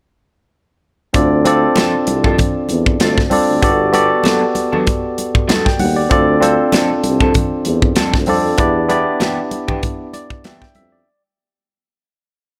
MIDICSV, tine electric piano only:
0, 0, Header, 1, 2, 480
1, 0, Start_track
1, 0, Tempo, 619835
1, 887, Time_signature, 4, 2, 24, 8
1, 9754, End_track
2, 0, Start_track
2, 0, Title_t, "Tine electric piano"
2, 0, Program_c, 0, 4
2, 878, Note_on_c, 0, 60, 68
2, 883, Note_on_c, 0, 62, 62
2, 888, Note_on_c, 0, 65, 61
2, 892, Note_on_c, 0, 69, 61
2, 896, Note_on_c, 0, 74, 78
2, 1017, Control_c, 0, 64, 127
2, 1073, Note_off_c, 0, 60, 0
2, 1075, Note_off_c, 0, 62, 0
2, 1078, Note_off_c, 0, 65, 0
2, 1080, Note_off_c, 0, 69, 0
2, 1082, Note_off_c, 0, 74, 0
2, 1119, Note_on_c, 0, 60, 72
2, 1123, Note_on_c, 0, 62, 67
2, 1130, Note_on_c, 0, 65, 61
2, 1135, Note_on_c, 0, 69, 69
2, 1140, Note_on_c, 0, 74, 81
2, 1870, Note_off_c, 0, 60, 0
2, 1872, Note_off_c, 0, 62, 0
2, 1876, Note_off_c, 0, 65, 0
2, 1878, Note_off_c, 0, 69, 0
2, 1881, Note_off_c, 0, 74, 0
2, 2556, Note_on_c, 0, 60, 69
2, 2561, Note_on_c, 0, 62, 59
2, 2567, Note_on_c, 0, 65, 60
2, 2572, Note_on_c, 0, 69, 60
2, 2576, Note_on_c, 0, 74, 76
2, 2753, Note_off_c, 0, 60, 0
2, 2755, Note_off_c, 0, 62, 0
2, 2758, Note_off_c, 0, 65, 0
2, 2761, Note_off_c, 0, 69, 0
2, 2763, Note_off_c, 0, 74, 0
2, 2798, Note_on_c, 0, 59, 70
2, 2804, Note_on_c, 0, 66, 69
2, 2806, Note_on_c, 0, 67, 65
2, 2813, Note_on_c, 0, 69, 61
2, 2818, Note_on_c, 0, 74, 79
2, 2819, Control_c, 0, 64, 0
2, 2937, Control_c, 0, 64, 127
2, 2994, Note_off_c, 0, 59, 0
2, 2997, Note_off_c, 0, 66, 0
2, 2998, Note_off_c, 0, 67, 0
2, 3001, Note_off_c, 0, 69, 0
2, 3004, Note_off_c, 0, 74, 0
2, 3037, Note_on_c, 0, 59, 69
2, 3040, Note_on_c, 0, 66, 69
2, 3047, Note_on_c, 0, 67, 68
2, 3052, Note_on_c, 0, 69, 67
2, 3055, Note_on_c, 0, 74, 81
2, 3790, Note_off_c, 0, 59, 0
2, 3792, Note_off_c, 0, 66, 0
2, 3795, Note_off_c, 0, 67, 0
2, 3797, Note_off_c, 0, 69, 0
2, 3799, Note_off_c, 0, 74, 0
2, 4378, Note_on_c, 0, 79, 58
2, 4483, Note_off_c, 0, 79, 0
2, 4490, Note_on_c, 0, 78, 64
2, 4613, Note_off_c, 0, 78, 0
2, 4619, Note_on_c, 0, 74, 61
2, 4719, Note_on_c, 0, 60, 75
2, 4723, Note_on_c, 0, 62, 66
2, 4730, Note_off_c, 0, 74, 0
2, 4730, Note_on_c, 0, 65, 68
2, 4735, Note_on_c, 0, 69, 70
2, 4739, Note_on_c, 0, 74, 82
2, 4741, Control_c, 0, 64, 0
2, 4860, Control_c, 0, 64, 127
2, 4915, Note_off_c, 0, 60, 0
2, 4917, Note_off_c, 0, 62, 0
2, 4921, Note_off_c, 0, 65, 0
2, 4923, Note_off_c, 0, 69, 0
2, 4925, Note_off_c, 0, 74, 0
2, 4957, Note_on_c, 0, 60, 74
2, 4962, Note_on_c, 0, 62, 66
2, 4967, Note_on_c, 0, 65, 67
2, 4974, Note_on_c, 0, 69, 64
2, 4977, Note_on_c, 0, 72, 86
2, 5711, Note_off_c, 0, 60, 0
2, 5713, Note_off_c, 0, 62, 0
2, 5716, Note_off_c, 0, 65, 0
2, 5719, Note_off_c, 0, 69, 0
2, 5721, Note_off_c, 0, 72, 0
2, 6404, Note_on_c, 0, 60, 70
2, 6408, Note_on_c, 0, 62, 63
2, 6413, Note_on_c, 0, 65, 63
2, 6419, Note_on_c, 0, 69, 62
2, 6424, Note_on_c, 0, 74, 73
2, 6598, Note_off_c, 0, 60, 0
2, 6600, Note_off_c, 0, 62, 0
2, 6602, Note_off_c, 0, 65, 0
2, 6606, Note_off_c, 0, 69, 0
2, 6608, Note_off_c, 0, 74, 0
2, 6640, Note_on_c, 0, 59, 72
2, 6642, Note_on_c, 0, 62, 67
2, 6649, Note_on_c, 0, 64, 68
2, 6655, Note_on_c, 0, 67, 63
2, 6660, Control_c, 0, 64, 0
2, 6660, Note_on_c, 0, 74, 75
2, 6813, Control_c, 0, 64, 127
2, 6836, Note_off_c, 0, 59, 0
2, 6837, Note_off_c, 0, 62, 0
2, 6841, Note_off_c, 0, 64, 0
2, 6843, Note_off_c, 0, 67, 0
2, 6846, Note_off_c, 0, 74, 0
2, 6879, Note_on_c, 0, 59, 72
2, 6885, Note_on_c, 0, 62, 68
2, 6891, Note_on_c, 0, 64, 65
2, 6896, Note_on_c, 0, 67, 66
2, 6900, Note_on_c, 0, 74, 79
2, 7632, Note_off_c, 0, 59, 0
2, 7635, Note_off_c, 0, 62, 0
2, 7638, Note_off_c, 0, 64, 0
2, 7640, Note_off_c, 0, 67, 0
2, 7642, Note_off_c, 0, 74, 0
2, 7849, Note_on_c, 0, 74, 59
2, 8078, Note_off_c, 0, 74, 0
2, 8091, Note_on_c, 0, 76, 58
2, 8214, Note_off_c, 0, 76, 0
2, 8220, Note_on_c, 0, 79, 60
2, 8325, Note_off_c, 0, 79, 0
2, 8330, Note_on_c, 0, 76, 62
2, 8453, Note_off_c, 0, 76, 0
2, 8458, Note_on_c, 0, 74, 58
2, 8580, Control_c, 0, 64, 0
2, 8687, Note_off_c, 0, 74, 0
2, 9754, End_track
0, 0, End_of_file